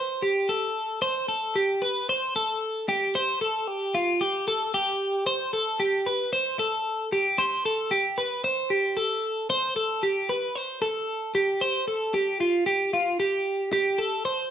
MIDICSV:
0, 0, Header, 1, 2, 480
1, 0, Start_track
1, 0, Tempo, 528634
1, 937, Time_signature, 4, 2, 24, 8
1, 13171, End_track
2, 0, Start_track
2, 0, Title_t, "Clean electric guitar"
2, 0, Program_c, 0, 27
2, 0, Note_on_c, 0, 72, 69
2, 204, Note_on_c, 0, 67, 74
2, 209, Note_off_c, 0, 72, 0
2, 446, Note_on_c, 0, 69, 72
2, 450, Note_off_c, 0, 67, 0
2, 903, Note_off_c, 0, 69, 0
2, 925, Note_on_c, 0, 72, 91
2, 1163, Note_off_c, 0, 72, 0
2, 1167, Note_on_c, 0, 69, 70
2, 1413, Note_off_c, 0, 69, 0
2, 1413, Note_on_c, 0, 67, 73
2, 1652, Note_on_c, 0, 71, 72
2, 1657, Note_off_c, 0, 67, 0
2, 1896, Note_off_c, 0, 71, 0
2, 1900, Note_on_c, 0, 72, 76
2, 2138, Note_off_c, 0, 72, 0
2, 2141, Note_on_c, 0, 69, 66
2, 2594, Note_off_c, 0, 69, 0
2, 2621, Note_on_c, 0, 67, 69
2, 2862, Note_on_c, 0, 72, 90
2, 2863, Note_off_c, 0, 67, 0
2, 3095, Note_off_c, 0, 72, 0
2, 3099, Note_on_c, 0, 69, 66
2, 3338, Note_off_c, 0, 69, 0
2, 3338, Note_on_c, 0, 67, 76
2, 3582, Note_off_c, 0, 67, 0
2, 3583, Note_on_c, 0, 65, 68
2, 3822, Note_on_c, 0, 67, 68
2, 3825, Note_off_c, 0, 65, 0
2, 4062, Note_off_c, 0, 67, 0
2, 4065, Note_on_c, 0, 69, 70
2, 4302, Note_off_c, 0, 69, 0
2, 4306, Note_on_c, 0, 67, 74
2, 4758, Note_off_c, 0, 67, 0
2, 4781, Note_on_c, 0, 72, 94
2, 5020, Note_off_c, 0, 72, 0
2, 5023, Note_on_c, 0, 69, 69
2, 5263, Note_on_c, 0, 67, 70
2, 5266, Note_off_c, 0, 69, 0
2, 5506, Note_off_c, 0, 67, 0
2, 5506, Note_on_c, 0, 71, 68
2, 5742, Note_off_c, 0, 71, 0
2, 5745, Note_on_c, 0, 72, 80
2, 5983, Note_off_c, 0, 72, 0
2, 5986, Note_on_c, 0, 69, 65
2, 6438, Note_off_c, 0, 69, 0
2, 6469, Note_on_c, 0, 67, 73
2, 6704, Note_on_c, 0, 72, 100
2, 6709, Note_off_c, 0, 67, 0
2, 6946, Note_off_c, 0, 72, 0
2, 6951, Note_on_c, 0, 69, 69
2, 7183, Note_on_c, 0, 67, 82
2, 7189, Note_off_c, 0, 69, 0
2, 7425, Note_off_c, 0, 67, 0
2, 7426, Note_on_c, 0, 71, 66
2, 7662, Note_off_c, 0, 71, 0
2, 7665, Note_on_c, 0, 72, 69
2, 7902, Note_on_c, 0, 67, 69
2, 7906, Note_off_c, 0, 72, 0
2, 8143, Note_on_c, 0, 69, 73
2, 8144, Note_off_c, 0, 67, 0
2, 8595, Note_off_c, 0, 69, 0
2, 8625, Note_on_c, 0, 72, 102
2, 8860, Note_off_c, 0, 72, 0
2, 8864, Note_on_c, 0, 69, 74
2, 9104, Note_off_c, 0, 69, 0
2, 9107, Note_on_c, 0, 67, 77
2, 9346, Note_off_c, 0, 67, 0
2, 9347, Note_on_c, 0, 71, 74
2, 9584, Note_off_c, 0, 71, 0
2, 9584, Note_on_c, 0, 72, 83
2, 9819, Note_off_c, 0, 72, 0
2, 9823, Note_on_c, 0, 69, 65
2, 10273, Note_off_c, 0, 69, 0
2, 10305, Note_on_c, 0, 67, 72
2, 10543, Note_off_c, 0, 67, 0
2, 10546, Note_on_c, 0, 72, 97
2, 10780, Note_off_c, 0, 72, 0
2, 10784, Note_on_c, 0, 69, 70
2, 11022, Note_off_c, 0, 69, 0
2, 11024, Note_on_c, 0, 67, 77
2, 11259, Note_off_c, 0, 67, 0
2, 11262, Note_on_c, 0, 65, 68
2, 11494, Note_off_c, 0, 65, 0
2, 11498, Note_on_c, 0, 67, 72
2, 11738, Note_off_c, 0, 67, 0
2, 11744, Note_on_c, 0, 65, 67
2, 11979, Note_off_c, 0, 65, 0
2, 11983, Note_on_c, 0, 67, 74
2, 12431, Note_off_c, 0, 67, 0
2, 12464, Note_on_c, 0, 67, 91
2, 12698, Note_on_c, 0, 69, 70
2, 12700, Note_off_c, 0, 67, 0
2, 12937, Note_off_c, 0, 69, 0
2, 12941, Note_on_c, 0, 72, 80
2, 13171, Note_off_c, 0, 72, 0
2, 13171, End_track
0, 0, End_of_file